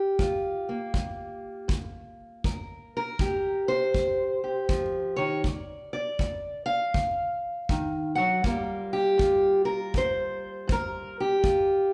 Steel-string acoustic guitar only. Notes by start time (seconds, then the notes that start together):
Already playing: G2 G4 A#4
0.20 G2 F4
0.69 A#3
0.94 G2
1.68 G2
2.44 D#3 A#4
2.97 A#4
3.19 D#3 G4
3.68 C5
3.94 D#3
4.44 G4
4.69 F3
5.16 D#3 C#5
5.45 D3 D5
5.93 D5
6.20 D3
6.66 F5
6.95 D3
7.70 D#3
8.15 F#3 F#5
8.44 G2 G3 A#3 F4 A#4
8.93 G4
9.18 G2 F4
9.65 A#4
9.94 G2 C5
10.67 G2
10.72 A#4
11.20 G4
11.43 G2 F4